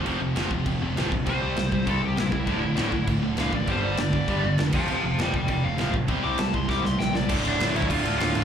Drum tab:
CC |x---x---x---x---|x---x---x---x---|x---x---x---x---|x---x---x---x-x-|
SD |----o-------o---|----o-------o---|----o-------o---|----o-------o---|
BD |------o-o-----o-|o-----o-o-----o-|o-----o-o-----o-|o-----o-o-----o-|

CC |x---x---x---x---|x---x-----------|x-x-x-x-x-x-x-x-|
SD |----o-------o---|----o---o-o-o-o-|----o-------o---|
BD |------o-o-----o-|o-----o-o-------|o------oo-------|